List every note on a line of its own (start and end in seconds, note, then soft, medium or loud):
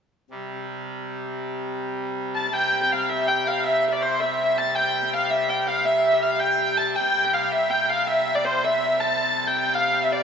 0.30 2.49 C3 soft
0.30 2.49 G3 soft
2.35 2.45 A5 medium
2.45 2.53 A5 medium
2.51 6.95 C3 soft
2.51 6.95 G3 soft
2.51 2.81 G5 medium
2.81 2.92 G5 medium
2.92 3.09 F5 medium
3.09 3.28 E5 medium
3.28 3.47 G5 medium
3.47 3.64 F5 medium
3.64 3.88 E5 medium
3.88 3.93 E5 medium
3.93 4.02 D5 medium
4.02 4.20 C5 medium
4.20 4.58 E5 medium
4.58 4.76 A5 medium
4.76 5.03 G5 medium
5.03 5.14 G5 medium
5.14 5.30 F5 medium
5.30 5.49 E5 medium
5.49 5.67 G5 medium
5.67 5.85 F5 medium
5.85 6.12 E5 medium
6.12 6.23 E5 medium
6.23 6.41 F5 medium
6.40 6.78 G5 medium
6.78 6.96 A5 medium
6.96 10.23 C3 medium
6.96 10.23 G3 soft
6.96 7.24 G5 medium
7.24 7.33 G5 medium
7.33 7.52 F5 medium
7.52 7.70 E5 medium
7.70 7.85 G5 medium
7.85 7.90 G5 medium
7.90 8.08 F5 medium
8.08 8.35 E5 medium
8.35 8.45 D5 medium
8.45 8.64 C5 medium
8.64 9.01 E5 medium
9.00 9.47 A5 medium
9.47 9.56 G5 medium
9.56 9.75 G5 medium
9.75 10.03 F5 medium
10.03 10.12 E5 medium
10.12 10.23 D5 medium